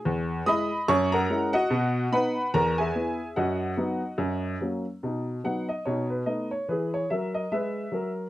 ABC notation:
X:1
M:4/4
L:1/8
Q:"Swing" 1/4=145
K:B
V:1 name="Upright piano"
z2 [dbd']2 [cc'] [Afa]2 [Fdf]- | [Fdf]2 [Bfb]2 [Aa] [Geg]3 | [Fdf]6 z2 | z2 f d c B d c |
B c e d e3 z |]
V:2 name="Upright piano"
E,,2 [G,E]2 F,,2 [G,CE]2 | B,,2 [B,D]2 E,,2 [B,E]2 | F,,2 [F,B,D]2 F,,2 [F,A,C]2 | [B,,D]2 [F,B,D]2 [B,,D]2 [=A,B,D]2 |
[E,G]2 [F,A]2 [G,B]2 [F,A]2 |]